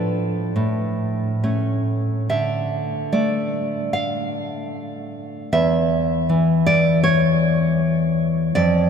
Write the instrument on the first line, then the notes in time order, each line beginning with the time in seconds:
nylon-string guitar
Already playing: A2 F3 D4 A4
0.56 A2
1.44 A3 C#4
2.29 D3 E5
3.12 A3 D5
3.93 F5
5.53 E2 E5
6.29 E3
6.66 D5
7.04 C#5
8.55 F2 D5